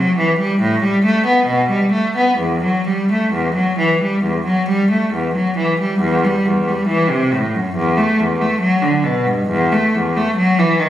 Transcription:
cello
Already playing: F#3
0.18 E3
0.39 G3
0.61 A2
0.83 G3
1.05 A3
1.26 B3
1.46 B2
1.70 G3
1.92 A3
2.16 B3
2.38 E2
2.64 F#3
2.88 G3
3.12 A3
3.33 E2
3.56 F#3
3.78 E3
4.02 G3
4.23 E2
4.46 F#3
4.69 G3
4.91 A3
5.14 E2
5.35 F#3
5.57 E3
5.80 G3
6.00 E2
6.25 G3
6.46 E2
6.68 G3
6.88 E3
7.09 C3
7.32 A2
7.54 F#2
7.76 E2
7.98 A3
8.20 E2
8.41 A3
8.61 F#3
8.82 D3
9.04 B2
9.26 G2
9.49 E2
9.72 A3
9.95 E2
10.17 A3
10.37 F#3
10.59 E3
10.80 D#3

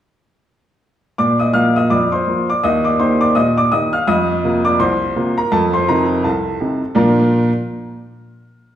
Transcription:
upright piano
1.18 A#2 D5 D6
1.39 D#5 D#6
1.53 F3 A#3 F4 F5 F6
1.76 D#5 D#6
1.90 F2 D5 D6
2.12 C5 C6
2.27 F3 A#3 F4
2.50 D5 D6
2.63 D#2 D#5 D#6
2.84 D5 D6
2.99 D#3 A#3 G4 C5 C6
3.21 D5 D6
3.35 A#2 D#5 D#6
3.58 D5 D6
3.72 D#3 A#3 G4 D#5 D#6
3.93 F5 F6
4.07 F2 D#5 D#6
4.44 C3 A#3 F4
4.65 D5 D6
4.79 C2 C5 C6
5.16 C3 A#3 F4
5.38 A#4 A#5
5.52 F2 A4 A5
5.73 C5 C6
5.88 C3 C4 D#4 A#4 A#5
6.24 C2 A4 A5
6.60 C3 C4 D#4
6.95 A#2 F3 D4 F4 A#4 D5 A#5

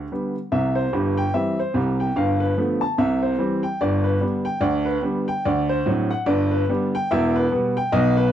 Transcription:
upright piano
Already playing: D4 G4
0.12 D3 G3 B3
0.52 C2 C3 E5
0.75 C5
0.93 G1 G2 G3
1.18 G5
1.34 E3 G3 C4 E5
1.59 C5
1.74 C2 C3 G3
2.00 G5
2.16 G1 G2 F5
2.40 B4
2.57 D3 F3 A3 B3
2.81 A5
2.98 C2 C3 E5
3.23 C5
3.38 E3 G3 C4
3.63 G5
3.81 G1 G2 D5
4.04 B4
4.20 D3 G3 B3 D4
4.45 G5
4.60 D2 D3 D5
4.85 B4
5.02 D3 G3 B3 D4
5.28 G5
5.45 D2 D3 D5
5.69 C5
5.86 A2 F#3 C4 D4
6.11 F#5
6.26 G1 G2 D5
6.51 B4
6.69 D3 G3 B3 D4
6.95 G5
7.11 E1 E2 E5
7.36 B4
7.51 B2 G3 B3
7.77 G5
7.92 B1 B2 D#5
8.17 B4

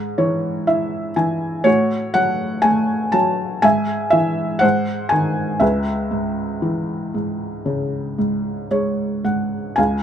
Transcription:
felt piano
Already playing: G#2 C5 D#5
0.18 E3 C#5
0.67 E4 E5
1.16 E3 G#5
1.64 A2 F#4 C#5
2.14 F#3 F#5
2.62 A3 G#5
3.12 F#3 A5
3.62 G#2 E5 G#5
4.10 E3 E5
4.59 G#2 C5 F#5
5.09 D#3 G#5
5.60 C#2 B4 E5
6.11 G#2
6.62 E3
7.14 G#2
7.66 C#3
8.18 G#2
8.71 G#3 C#5
9.25 G#2 F#5
9.76 C#2 F5 G#5

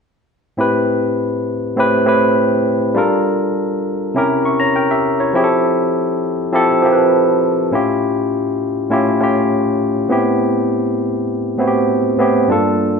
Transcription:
tine electric piano
0.57 A2 C4 E4 G4 B4
1.76 A2 C4 E4 G4 B4
2.05 A2 C4 E4 G4 B4
2.94 G3 D4 F4 A4 A#4
4.14 C3 C#4 E4 G4 A#4
4.45 E5 C#6
4.60 C#5 A#5
4.76 A#4 G5
4.91 G4 E5
5.20 E4 C#5
5.33 F3 C4 E4 G4 G#4
5.44 A4
6.52 F3 C4 E4 G4 A4
6.82 F3 C4 E4 G4 A#4
6.92 B4
7.71 A2 C#4 E4 F4 G4
8.90 A2 C#4 E4 F4 G4
9.19 A2 C#4 E4 F4 G4
10.09 A2 B3 C4 E4 G4
11.58 A2 B3 C4 E4 F#4
11.67 G4
12.18 A2 B3 C4 E4 G4
12.48 G2 A3 D4 F4 A4
12.55 A#3

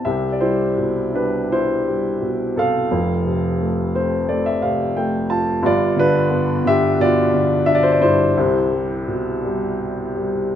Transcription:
grand piano
0.05 C2 C3 G4 E5
0.32 D5
0.41 G3 E4 C5
0.77 B2
1.14 G3 D4 B4
1.52 E4 C5
1.87 G3
2.21 B2
2.56 C3 A4 F5
2.91 F1 F2
3.25 C3
3.61 A3
3.95 C4 C5
4.29 A3 D5
4.46 E5
4.62 C3 F5
4.97 A3 G5
5.30 F4 A5
5.62 G1 G2 F4 D5
5.97 D3 D4 B4
6.30 B3
6.65 D3 G4 E5
6.99 B2 F4 D5
7.34 D3
7.66 D4 E5
7.75 D5
7.83 C5
7.92 D5
8.01 G2 E4 C5
8.37 C2 C3
8.72 G3
9.07 B2
9.44 G3
10.16 G3

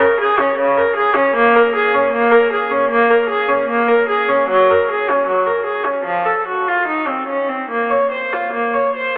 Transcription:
viola
0.00 A#4
0.20 G#4
0.40 C#4
0.59 C#3
0.77 A#4
0.96 G#4
1.15 C#4
1.35 A#3
1.56 A#4
1.75 G#4
1.94 C#4
2.13 A#3
2.32 A#4
2.53 G#4
2.71 C#4
2.90 A#3
3.10 A#4
3.29 G#4
3.49 C#4
3.69 A#3
3.88 A#4
4.09 G#4
4.29 C#4
4.48 F#3
4.71 A#4
4.91 G#4
5.10 C#4
5.27 F#3
5.47 A#4
5.66 G#4
5.85 C#4
6.05 F3
6.26 A4
6.47 F#4
6.68 F4
6.87 D#4
7.08 C4
7.27 C#4
7.49 C4
7.70 A#3
7.90 C#5
8.11 C5
8.33 F4
8.53 A#3
8.74 C#5
8.96 C5

